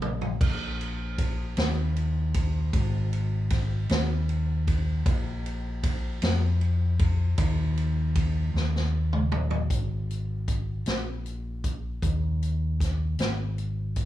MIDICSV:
0, 0, Header, 1, 3, 480
1, 0, Start_track
1, 0, Tempo, 775194
1, 251, Time_signature, 6, 3, 24, 8
1, 8700, End_track
2, 0, Start_track
2, 0, Title_t, "Fingered electric bass"
2, 0, Program_c, 0, 33
2, 0, Note_on_c, 0, 34, 82
2, 227, Note_off_c, 0, 34, 0
2, 254, Note_on_c, 0, 34, 97
2, 948, Note_off_c, 0, 34, 0
2, 974, Note_on_c, 0, 39, 105
2, 1668, Note_off_c, 0, 39, 0
2, 1691, Note_on_c, 0, 32, 114
2, 2386, Note_off_c, 0, 32, 0
2, 2412, Note_on_c, 0, 39, 94
2, 3106, Note_off_c, 0, 39, 0
2, 3131, Note_on_c, 0, 34, 104
2, 3825, Note_off_c, 0, 34, 0
2, 3853, Note_on_c, 0, 41, 83
2, 4546, Note_off_c, 0, 41, 0
2, 4570, Note_on_c, 0, 39, 111
2, 5264, Note_off_c, 0, 39, 0
2, 5287, Note_on_c, 0, 39, 85
2, 5982, Note_off_c, 0, 39, 0
2, 6007, Note_on_c, 0, 32, 92
2, 6702, Note_off_c, 0, 32, 0
2, 6725, Note_on_c, 0, 34, 80
2, 7421, Note_off_c, 0, 34, 0
2, 7446, Note_on_c, 0, 39, 99
2, 8141, Note_off_c, 0, 39, 0
2, 8165, Note_on_c, 0, 32, 91
2, 8700, Note_off_c, 0, 32, 0
2, 8700, End_track
3, 0, Start_track
3, 0, Title_t, "Drums"
3, 12, Note_on_c, 9, 45, 91
3, 74, Note_off_c, 9, 45, 0
3, 132, Note_on_c, 9, 43, 82
3, 194, Note_off_c, 9, 43, 0
3, 253, Note_on_c, 9, 36, 119
3, 254, Note_on_c, 9, 49, 83
3, 315, Note_off_c, 9, 36, 0
3, 315, Note_off_c, 9, 49, 0
3, 500, Note_on_c, 9, 51, 46
3, 562, Note_off_c, 9, 51, 0
3, 732, Note_on_c, 9, 51, 71
3, 733, Note_on_c, 9, 36, 89
3, 794, Note_off_c, 9, 51, 0
3, 795, Note_off_c, 9, 36, 0
3, 970, Note_on_c, 9, 51, 70
3, 980, Note_on_c, 9, 38, 106
3, 1032, Note_off_c, 9, 51, 0
3, 1042, Note_off_c, 9, 38, 0
3, 1216, Note_on_c, 9, 51, 42
3, 1278, Note_off_c, 9, 51, 0
3, 1450, Note_on_c, 9, 51, 72
3, 1453, Note_on_c, 9, 36, 89
3, 1512, Note_off_c, 9, 51, 0
3, 1515, Note_off_c, 9, 36, 0
3, 1692, Note_on_c, 9, 36, 112
3, 1692, Note_on_c, 9, 51, 78
3, 1754, Note_off_c, 9, 36, 0
3, 1754, Note_off_c, 9, 51, 0
3, 1936, Note_on_c, 9, 51, 44
3, 1998, Note_off_c, 9, 51, 0
3, 2169, Note_on_c, 9, 51, 71
3, 2172, Note_on_c, 9, 36, 92
3, 2182, Note_on_c, 9, 38, 38
3, 2231, Note_off_c, 9, 51, 0
3, 2234, Note_off_c, 9, 36, 0
3, 2244, Note_off_c, 9, 38, 0
3, 2411, Note_on_c, 9, 51, 66
3, 2421, Note_on_c, 9, 38, 106
3, 2473, Note_off_c, 9, 51, 0
3, 2483, Note_off_c, 9, 38, 0
3, 2656, Note_on_c, 9, 51, 40
3, 2718, Note_off_c, 9, 51, 0
3, 2895, Note_on_c, 9, 36, 89
3, 2895, Note_on_c, 9, 51, 64
3, 2957, Note_off_c, 9, 36, 0
3, 2957, Note_off_c, 9, 51, 0
3, 3132, Note_on_c, 9, 36, 114
3, 3133, Note_on_c, 9, 51, 82
3, 3194, Note_off_c, 9, 36, 0
3, 3195, Note_off_c, 9, 51, 0
3, 3380, Note_on_c, 9, 51, 45
3, 3442, Note_off_c, 9, 51, 0
3, 3612, Note_on_c, 9, 51, 74
3, 3613, Note_on_c, 9, 36, 95
3, 3674, Note_off_c, 9, 51, 0
3, 3675, Note_off_c, 9, 36, 0
3, 3850, Note_on_c, 9, 51, 68
3, 3859, Note_on_c, 9, 38, 107
3, 3912, Note_off_c, 9, 51, 0
3, 3921, Note_off_c, 9, 38, 0
3, 4093, Note_on_c, 9, 51, 40
3, 4155, Note_off_c, 9, 51, 0
3, 4330, Note_on_c, 9, 51, 66
3, 4332, Note_on_c, 9, 36, 101
3, 4392, Note_off_c, 9, 51, 0
3, 4394, Note_off_c, 9, 36, 0
3, 4568, Note_on_c, 9, 51, 84
3, 4570, Note_on_c, 9, 36, 117
3, 4629, Note_off_c, 9, 51, 0
3, 4632, Note_off_c, 9, 36, 0
3, 4814, Note_on_c, 9, 51, 47
3, 4876, Note_off_c, 9, 51, 0
3, 5049, Note_on_c, 9, 51, 69
3, 5050, Note_on_c, 9, 36, 88
3, 5111, Note_off_c, 9, 51, 0
3, 5112, Note_off_c, 9, 36, 0
3, 5301, Note_on_c, 9, 38, 58
3, 5363, Note_off_c, 9, 38, 0
3, 5424, Note_on_c, 9, 38, 54
3, 5485, Note_off_c, 9, 38, 0
3, 5652, Note_on_c, 9, 47, 71
3, 5714, Note_off_c, 9, 47, 0
3, 5770, Note_on_c, 9, 45, 97
3, 5832, Note_off_c, 9, 45, 0
3, 5886, Note_on_c, 9, 43, 94
3, 5948, Note_off_c, 9, 43, 0
3, 6007, Note_on_c, 9, 36, 90
3, 6008, Note_on_c, 9, 42, 85
3, 6069, Note_off_c, 9, 36, 0
3, 6070, Note_off_c, 9, 42, 0
3, 6257, Note_on_c, 9, 42, 48
3, 6319, Note_off_c, 9, 42, 0
3, 6488, Note_on_c, 9, 36, 76
3, 6488, Note_on_c, 9, 42, 80
3, 6550, Note_off_c, 9, 36, 0
3, 6550, Note_off_c, 9, 42, 0
3, 6724, Note_on_c, 9, 42, 69
3, 6734, Note_on_c, 9, 38, 93
3, 6786, Note_off_c, 9, 42, 0
3, 6795, Note_off_c, 9, 38, 0
3, 6970, Note_on_c, 9, 42, 46
3, 7032, Note_off_c, 9, 42, 0
3, 7207, Note_on_c, 9, 42, 72
3, 7208, Note_on_c, 9, 36, 79
3, 7269, Note_off_c, 9, 42, 0
3, 7270, Note_off_c, 9, 36, 0
3, 7445, Note_on_c, 9, 36, 102
3, 7447, Note_on_c, 9, 42, 80
3, 7507, Note_off_c, 9, 36, 0
3, 7509, Note_off_c, 9, 42, 0
3, 7694, Note_on_c, 9, 42, 49
3, 7756, Note_off_c, 9, 42, 0
3, 7928, Note_on_c, 9, 36, 81
3, 7933, Note_on_c, 9, 42, 77
3, 7946, Note_on_c, 9, 38, 36
3, 7990, Note_off_c, 9, 36, 0
3, 7995, Note_off_c, 9, 42, 0
3, 8008, Note_off_c, 9, 38, 0
3, 8166, Note_on_c, 9, 42, 71
3, 8175, Note_on_c, 9, 38, 92
3, 8228, Note_off_c, 9, 42, 0
3, 8237, Note_off_c, 9, 38, 0
3, 8409, Note_on_c, 9, 42, 43
3, 8470, Note_off_c, 9, 42, 0
3, 8643, Note_on_c, 9, 42, 72
3, 8646, Note_on_c, 9, 36, 75
3, 8700, Note_off_c, 9, 36, 0
3, 8700, Note_off_c, 9, 42, 0
3, 8700, End_track
0, 0, End_of_file